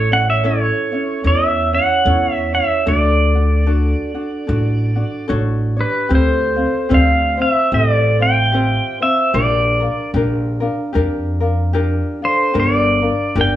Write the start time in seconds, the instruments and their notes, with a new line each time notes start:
Already playing: upright bass A1, ukulele C#4 E4 C#5, pedal steel guitar C#5
0.11 ukulele C#4 E4 C#5, vibraphone D5, pedal steel guitar F#5
0.29 vibraphone C#5, pedal steel guitar E5
0.43 ukulele C#4 E4 A4 C#5, vibraphone A4, pedal steel guitar C#5
0.92 ukulele C#4 E4 C#5
1.23 upright bass E2, ukulele C#4 E4 A4 C#5, vibraphone C#5
1.27 pedal steel guitar E5
1.72 ukulele C#4 E4 C#5, vibraphone C#5, pedal steel guitar F#5
2.05 upright bass E2, ukulele C#4 E4 A4 C#5
2.34 pedal steel guitar E5
2.52 ukulele C#4 E4 C#5, vibraphone C#5, pedal steel guitar E5
2.86 upright bass D2, ukulele D4 F#4 A4, vibraphone A4, pedal steel guitar D5
3.35 ukulele D4 F#4
3.67 ukulele D4 F#4 A4
4.14 ukulele D4 F#4
4.47 upright bass A1, ukulele D4 F#4 A4
4.96 ukulele D4 F#4
5.28 upright bass A1, ukulele D4 F#4 A4 C#5
5.77 ukulele D4 C#5, vibraphone G4, pedal steel guitar B4
6.09 upright bass D2, ukulele C4 F4 G4 C5
6.13 vibraphone A4, pedal steel guitar C5
6.55 ukulele C4 F4 C5
6.89 upright bass D2, ukulele C4 F4 G4 C5, vibraphone D5
6.94 pedal steel guitar F5
7.37 ukulele C4 F4 C5, vibraphone C5
7.42 pedal steel guitar E5
7.72 upright bass A1, ukulele C4 F4 G4 C5, vibraphone A4, pedal steel guitar D#5
7.92 pedal steel guitar D5
8.19 ukulele C4 F4 C5, vibraphone E5, pedal steel guitar G5
8.52 ukulele C4 F4 G4 C5
9.00 ukulele C4 F4 C5, vibraphone C5, pedal steel guitar E5
9.33 upright bass A#1, ukulele D4 F4 G4 A#4, pedal steel guitar D5
9.80 ukulele D4 F4 A#4
10.14 upright bass A#1, ukulele D4 F4 G4 A#4
10.60 ukulele D4 F4 A#4
10.93 upright bass F2, ukulele D4 F4 G4 A#4
11.40 ukulele D4 F4 A#4
11.73 ukulele D4 F4 G4 A#4
12.22 ukulele D4 F4, vibraphone A4, pedal steel guitar C5
12.53 upright bass G1, ukulele D4 F4 G4 A#4
12.60 pedal steel guitar D5
13.02 ukulele D4 F4 A#4
13.36 upright bass G1, ukulele D4 F4 G4 A#4, vibraphone D5
13.41 pedal steel guitar G5